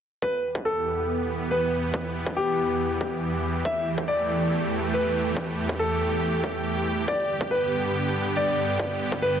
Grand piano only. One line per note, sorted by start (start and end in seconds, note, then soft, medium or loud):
0.22 0.46 B4 medium
0.65 1.43 A4 medium
1.51 2.28 B4 medium
2.37 3.57 G4 medium
3.65 3.89 E5 medium
4.08 4.86 D5 medium
4.94 5.71 B4 medium
5.79 7.00 A4 medium
7.08 7.31 D5 medium
7.51 8.29 B4 medium
8.37 9.14 D5 medium
9.22 9.40 B4 medium